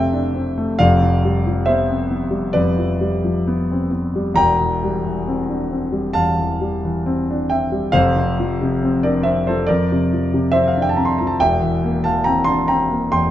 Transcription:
Already playing: F2 C3 A3 C4 D4 C5 D5 E5 F5 G5 A5
0.13 D4
0.35 C4
0.58 A3
0.79 F1 F2 D5 F5
1.02 F3
1.25 G3
1.47 F3
1.66 B3 C5 E5
1.89 C4
2.10 B3
2.31 G3
2.53 F2 B4 D5
2.78 F3
3.01 G3
3.24 F3
3.47 B3
3.72 C4
3.91 B3
4.15 G3
4.34 E1 E2 G5 A#5
4.61 E3
4.84 G3
5.05 E3
5.28 C4
5.49 D4
5.71 C4
5.92 G3
6.13 E2 F5 A5
6.40 E3
6.61 G3
6.85 E3
7.06 C4
7.30 D4
7.50 C4 E5 G5
7.72 G3
7.92 F1 F2 C5 F5
8.16 C3
8.40 F3
8.61 C3
8.83 C4
9.03 D4 A#4 D5
9.23 C4 C5 E5
9.47 F3 A4 C5
9.67 F2 A#4 D5
9.92 C3
10.13 F3
10.34 C3
10.52 C4 C5 E5
10.68 F5
10.77 D4
10.82 G5
10.89 A5
10.96 C4 A#5
11.05 C6
11.18 F3 A#5
11.27 A5
11.40 E1 E2 E5 G5
11.62 E3
11.84 A#3
12.04 E3 F5 A5
12.24 C4 G5 A#5
12.44 D4 A5 C6
12.68 C4 G5 A#5
12.91 A#3
13.12 E2 G5 C6

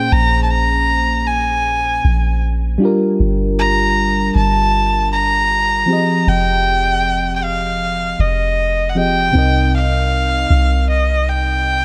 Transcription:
Already playing: A#2 A#3 C#4 G#4 C5 G5
0.12 A#1 A#5
0.44 A5
0.50 A#5
1.27 G#5
2.04 A#1
2.78 G3 D4 F4
2.83 G4 A#4
3.19 G1
3.59 A#5
4.35 G1 A5
5.13 A#5
5.86 F3 C4 G4
5.91 G#4 D#5
6.27 F1 G5
7.36 G5
7.44 F5
8.19 F1 D#5
8.89 F#5
8.95 F3 C4 G4 G#4 D#5 G5
9.31 C2 C3 C4 D#4
9.37 A#4 D#5
9.74 F5
10.50 C2
10.90 D#5
11.28 G5

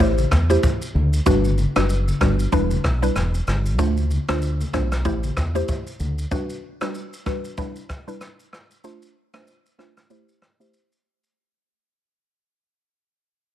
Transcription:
0.00 A1 A3 E4 G4 C5, kick, shaker
0.18 high conga, shaker
0.31 E2, kick, cross-stick, shaker
0.50 A3 E4 G4 C5, shaker
0.63 kick, low conga, shaker
0.82 shaker
0.95 D2, high conga
1.13 shaker
1.26 G1 G3 D4 F#4 B4, kick, low conga, shaker
1.45 high conga, shaker
1.58 high conga, shaker
1.76 F#1 G3 D4 F#4 B4, cross-stick, shaker
1.89 shaker
2.08 high conga, shaker
2.21 G1 G3 D4 F#4 B4, kick, cross-stick, low conga, shaker
2.39 shaker
2.52 E1 G3 D4 E4 B4, kick, shaker
2.71 high conga, shaker
2.84 B1, kick, cross-stick
3.02 G3 D4 E4 B4, shaker
3.16 E1, cross-stick, low conga, shaker
3.34 shaker
3.47 G1, cross-stick, high conga, shaker
3.66 shaker
3.79 D2 A3 D4 F4 C5, kick, low conga, shaker
3.97 high conga, shaker
4.10 high conga, shaker
4.29 D2 A3 D4 F4 C5, cross-stick, shaker
4.42 shaker
4.61 high conga, shaker
4.73 B1 A3 D4 F4 C5, kick, cross-stick, low conga, shaker
4.92 cross-stick, shaker
5.05 A1 A3 E4 G4 C5, kick, shaker
5.23 high conga, shaker
5.37 E2, kick, cross-stick, shaker
5.55 A3 E4 G4 C5, shaker
5.68 kick, low conga, shaker
5.87 shaker
6.00 D2, high conga, shaker
6.18 shaker
6.31 G3 D4 F#4 B4, kick, shaker
6.50 shaker
6.81 G3 D4 F#4 B4, cross-stick, shaker
6.95 shaker
7.13 shaker
7.26 G3 D4 F#4 B4, kick, cross-stick, shaker
7.45 shaker
7.58 G3 D4 E4 B4, kick, shaker
7.76 shaker
7.89 kick, cross-stick, shaker
8.07 G3 D4 E4 B4, shaker
8.21 cross-stick, shaker
8.40 shaker
8.53 cross-stick
8.71 shaker
8.84 A3 D4 F4 C5, shaker
9.02 shaker
9.34 A3 D4 F4 C5, cross-stick, shaker
9.47 shaker
9.66 shaker
9.78 A3 D4 F4 C5, cross-stick
9.97 cross-stick, shaker
10.10 A3 E4 G4 C5, shaker
10.29 shaker
10.42 cross-stick
10.60 A3 E4 G4 C5, shaker
10.74 shaker
10.92 shaker
11.24 shaker

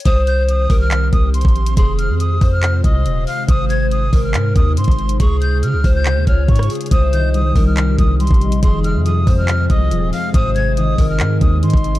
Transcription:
0.00 closed hi-hat
0.05 C2 D#3 C4 G4 C5 D#6, kick, closed hi-hat
0.27 G6, closed hi-hat
0.48 D#6, closed hi-hat
0.70 C2 A#4, kick, open hi-hat
0.81 F6
0.91 clap, closed hi-hat
1.13 C2 D#6, kick, closed hi-hat
1.34 C6, closed hi-hat
1.41 A#1, kick, closed hi-hat
1.48 closed hi-hat
1.56 closed hi-hat
1.66 closed hi-hat
1.77 F1 C3 G#3 F4 G#4 C6, kick, closed hi-hat
1.98 F6, closed hi-hat
2.09 F2
2.20 D#6, closed hi-hat
2.41 F2 C5, kick, open hi-hat
2.52 F6
2.63 clap, closed hi-hat
2.84 C2 D#5 D#6, kick, closed hi-hat
3.06 D#1, closed hi-hat
3.27 F5 F6, open hi-hat
3.48 G#1 D#4 C5 D#6, kick, closed hi-hat
3.70 G#6, closed hi-hat
3.91 D#6, closed hi-hat
4.13 G#1 A#4, kick, open hi-hat
4.24 F6
4.34 G#2, clap, closed hi-hat
4.56 D#2 D#6, kick, closed hi-hat
4.77 G#2 C6, closed hi-hat
4.84 G#1, kick, closed hi-hat
4.91 closed hi-hat
4.99 closed hi-hat
5.09 closed hi-hat
5.20 C#2 C#3 F4 G#4 C#6, kick, closed hi-hat
5.41 G6, closed hi-hat
5.63 C#3 F6, closed hi-hat
5.73 C#2
5.84 C#2 C5, kick, open hi-hat
5.95 G6
6.06 clap, closed hi-hat
6.16 D#2
6.27 C#2 C#5 F6, kick, closed hi-hat
6.48 G#2 C#6, kick, closed hi-hat
6.56 cross-stick, closed hi-hat
6.63 closed hi-hat
6.70 G#4, closed hi-hat, open hi-hat
6.75 closed hi-hat
6.81 closed hi-hat
6.86 closed hi-hat
6.91 C2 C3 G3 D#4 G4 C5 D#6, kick, closed hi-hat
7.13 D#3 G6, closed hi-hat
7.34 G3 D#6, closed hi-hat
7.56 C2 C4 A#4, kick, open hi-hat
7.67 F6
7.77 C5, clap, closed hi-hat
7.99 C2 C4 D#6, kick, closed hi-hat
8.20 G3 C6, closed hi-hat
8.27 A#1, kick, closed hi-hat
8.34 closed hi-hat
8.41 D#3, closed hi-hat
8.52 closed hi-hat
8.63 F1 F2 C3 G#3 F4 G#4 C6, kick, closed hi-hat
8.84 C3 F6, closed hi-hat
8.95 F2
9.06 F3 D#6, closed hi-hat
9.27 F2 G#3 C5, kick, open hi-hat
9.38 F6
9.48 C4, clap, closed hi-hat
9.70 C2 G#3 D#5 D#6, kick, closed hi-hat
9.91 D#1 F3, closed hi-hat
10.13 C3 F5 F6, open hi-hat
10.34 G#1 G#2 D#4 C5 D#6, kick, closed hi-hat
10.55 C3 G#6, closed hi-hat
10.77 D#3 D#6, closed hi-hat
10.98 G#1 G#3 A#4, kick, open hi-hat
11.09 F6
11.20 G#2 C4, clap, closed hi-hat
11.41 D#2 G#3 D#6, kick, closed hi-hat
11.63 G#2 D#3 C6, closed hi-hat
11.70 G#1, kick, closed hi-hat
11.77 closed hi-hat
11.84 C3, closed hi-hat
11.95 closed hi-hat

